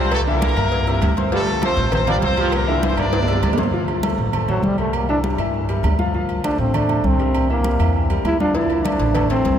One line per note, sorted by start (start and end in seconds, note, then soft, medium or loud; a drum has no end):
0.00 0.51 C2 loud
0.00 0.13 F3 medium
0.00 0.21 G3 medium
0.00 0.12 C4 medium
0.00 0.22 G4 medium
0.00 0.12 C5 medium
0.00 0.22 G5 medium
0.11 0.21 A3 medium
0.11 0.20 A4 loud
0.11 cowbell loud
0.11 high conga soft
0.11 low agogo loud
0.27 0.61 D3 medium
0.27 0.52 E3 loud
0.27 1.15 A#3 medium
0.27 0.52 E4 medium
0.27 1.14 A#4 loud
0.27 0.52 E5 medium
0.27 high conga soft
0.42 cowbell medium
0.42 high conga loud
0.42 low agogo medium
0.57 0.99 G2 medium
0.57 0.82 A#3 medium
0.57 0.82 A#4 medium
0.57 0.82 A#5 medium
0.57 high conga soft
0.57 low agogo loud
0.72 cowbell loud
0.72 high conga soft
0.87 1.11 C3 medium
0.87 1.12 E4 medium
0.87 1.12 E5 medium
0.87 1.12 E6 medium
0.87 high conga soft
0.87 low agogo medium
1.02 1.72 D2 loud
1.02 cowbell medium
1.02 high conga medium
1.02 low agogo loud
1.17 1.30 C4 medium
1.17 1.30 C5 medium
1.17 1.30 C6 medium
1.17 cowbell medium
1.17 high conga medium
1.32 1.57 F3 medium
1.32 1.48 G3 medium
1.32 1.61 A3 medium
1.32 1.57 F4 medium
1.32 1.61 A4 loud
1.32 1.57 F5 medium
1.32 cowbell loud
1.32 high conga soft
1.47 high conga soft
1.47 low agogo medium
1.62 1.86 F3 medium
1.62 1.87 A3 medium
1.62 1.92 C4 medium
1.62 1.87 A4 medium
1.62 1.92 C5 loud
1.62 1.87 A5 medium
1.62 cowbell medium
1.62 high conga loud
1.62 low agogo loud
1.77 2.19 A1 loud
1.77 cowbell medium
1.77 high conga soft
1.92 2.05 C4 medium
1.92 2.08 C4 medium
1.92 2.05 C5 medium
1.92 2.07 C5 medium
1.92 2.05 C6 medium
1.92 cowbell loud
1.92 high conga soft
1.92 low conga medium
1.92 low agogo loud
2.07 2.32 F3 medium
2.07 2.23 G3 medium
2.07 2.16 D4 medium
2.07 2.32 F4 medium
2.07 2.16 D5 medium
2.07 2.32 F5 medium
2.07 cowbell medium
2.07 high conga soft
2.07 low conga medium
2.07 low agogo loud
2.22 2.92 C2 loud
2.22 2.52 C4 medium
2.22 2.51 C5 loud
2.22 cowbell medium
2.22 high conga medium
2.37 2.54 F3 medium
2.37 2.62 G3 medium
2.37 2.62 G4 medium
2.37 2.62 G5 medium
2.37 cowbell medium
2.37 low agogo medium
2.52 2.82 A#3 medium
2.52 2.82 A#4 medium
2.52 cowbell loud
2.52 high conga soft
2.52 low agogo loud
2.67 3.02 D3 medium
2.67 2.92 E3 loud
2.67 2.93 E4 loud
2.67 2.93 E5 medium
2.67 high conga soft
2.83 2.99 C4 medium
2.83 2.99 C5 medium
2.83 cowbell medium
2.83 high conga loud
2.83 high timbale medium
2.83 low agogo medium
2.92 high timbale medium
2.97 3.40 G2 loud
2.97 3.22 A#3 medium
2.97 3.59 D4 medium
2.97 3.22 A#4 medium
2.97 3.59 D5 loud
2.97 3.23 A#5 medium
2.97 high conga soft
2.97 low agogo loud
3.03 high timbale medium
3.13 cowbell loud
3.13 high bongo medium
3.13 high conga soft
3.13 high timbale loud
3.23 low timbale loud
3.28 3.52 C3 medium
3.28 3.52 E4 medium
3.28 3.53 E5 medium
3.28 3.53 E6 medium
3.28 high conga soft
3.28 low agogo medium
3.33 low timbale loud
3.42 4.13 D2 loud
3.42 cowbell medium
3.42 high conga medium
3.42 low agogo loud
3.53 low timbale loud
3.58 3.70 C4 medium
3.58 3.71 C5 medium
3.58 3.71 C6 medium
3.58 cowbell medium
3.58 low bongo medium
3.58 high conga medium
3.63 low timbale loud
3.73 3.98 F3 medium
3.73 3.98 F4 medium
3.73 3.98 F5 medium
3.73 high conga soft
3.88 high conga soft
3.88 low agogo medium
4.03 4.28 A3 medium
4.03 4.28 A4 medium
4.03 4.28 C5 medium
4.03 high conga loud
4.03 low agogo loud
4.18 4.60 A1 loud
4.18 high conga soft
4.33 4.46 A3 medium
4.33 4.46 A4 medium
4.33 4.46 C5 medium
4.33 high conga soft
4.33 low conga medium
4.33 low agogo loud
4.48 4.67 F#3 medium
4.48 4.73 A3 medium
4.48 4.73 A4 medium
4.48 4.73 C5 medium
4.48 high conga soft
4.48 low conga medium
4.48 low agogo medium
4.63 5.33 C2 loud
4.63 4.79 G3 medium
4.63 high conga medium
4.78 5.03 G3 medium
4.78 4.96 A3 medium
4.78 5.03 G4 medium
4.78 5.03 A#4 medium
4.78 low agogo medium
4.93 5.09 A#3 medium
4.93 high conga soft
4.93 low agogo loud
5.09 5.21 E3 medium
5.09 5.19 D4 medium
5.09 5.21 E4 medium
5.09 5.21 E5 medium
5.09 high conga soft
5.24 5.36 G3 medium
5.24 5.36 G4 medium
5.24 5.37 A#4 medium
5.24 high conga medium
5.24 low agogo medium
5.38 5.80 G2 loud
5.38 5.64 E3 medium
5.38 5.64 E4 medium
5.38 5.64 E5 medium
5.38 high conga soft
5.38 low agogo loud
5.54 high conga soft
5.69 5.94 G3 medium
5.69 5.94 G4 medium
5.69 5.94 A#4 medium
5.69 high conga soft
5.69 low agogo medium
5.83 6.53 D2 medium
5.83 high conga medium
5.83 low timbale medium
5.83 low agogo loud
5.99 6.11 F3 medium
5.99 6.11 F4 medium
5.99 6.12 F5 medium
5.99 high conga medium
6.14 6.39 F3 medium
6.14 6.39 F4 medium
6.14 6.39 F5 medium
6.14 high conga soft
6.29 high conga soft
6.29 low agogo medium
6.44 6.69 A3 medium
6.44 6.58 D4 medium
6.44 6.69 A4 medium
6.44 6.69 C5 medium
6.44 high conga medium
6.44 low agogo loud
6.58 7.01 A1 loud
6.58 6.77 C4 medium
6.58 high conga soft
6.74 6.86 A3 medium
6.74 7.07 D4 medium
6.74 6.87 A4 medium
6.74 6.87 C5 medium
6.74 high conga soft
6.74 low conga medium
6.74 low agogo loud
6.89 7.14 A3 medium
6.89 7.14 A4 medium
6.89 7.14 C5 medium
6.89 high conga soft
6.89 low conga medium
6.89 low agogo medium
7.04 7.74 C2 loud
7.04 7.50 C4 medium
7.04 high conga medium
7.19 7.44 G3 medium
7.19 7.44 G4 medium
7.19 7.44 A#4 medium
7.19 low agogo medium
7.35 high conga soft
7.35 low agogo loud
7.50 7.62 E3 medium
7.50 7.93 A#3 medium
7.50 7.62 E4 medium
7.50 7.62 E5 medium
7.50 high conga soft
7.64 7.77 G3 medium
7.64 7.77 G4 medium
7.64 7.77 A#4 medium
7.64 high conga medium
7.64 low agogo medium
7.79 8.22 E2 medium
7.79 8.04 E3 medium
7.79 8.04 E4 medium
7.79 8.05 E5 medium
7.79 high conga soft
7.79 low agogo loud
7.95 high conga soft
8.10 8.35 G3 medium
8.10 8.35 G4 medium
8.10 8.35 A#4 medium
8.10 high conga soft
8.10 low agogo medium
8.24 8.95 D2 medium
8.24 8.40 E4 loud
8.24 high conga medium
8.24 low timbale medium
8.24 low agogo loud
8.40 8.52 F3 medium
8.40 8.58 D4 loud
8.40 8.53 F4 medium
8.40 8.53 F5 medium
8.40 high conga medium
8.55 8.80 F3 medium
8.55 8.80 D4 medium
8.55 8.88 E4 loud
8.55 8.80 D5 medium
8.55 cowbell loud
8.55 high conga soft
8.70 high conga soft
8.70 low agogo medium
8.85 9.10 A3 medium
8.85 9.31 D4 medium
8.85 9.10 A4 medium
8.85 9.10 C5 medium
8.85 cowbell medium
8.85 high conga medium
8.85 low agogo loud
8.99 9.42 A1 loud
8.99 cowbell medium
8.99 high conga soft
9.15 9.28 A3 medium
9.15 9.28 A4 medium
9.15 9.28 C5 medium
9.15 cowbell loud
9.15 high conga soft
9.15 low conga medium
9.15 low agogo loud
9.30 9.55 A3 medium
9.30 9.59 C4 loud
9.30 9.55 A4 medium
9.30 9.56 C5 medium
9.30 cowbell medium
9.30 high conga soft
9.30 low agogo medium
9.45 9.59 C2 medium
9.45 cowbell medium
9.45 high conga medium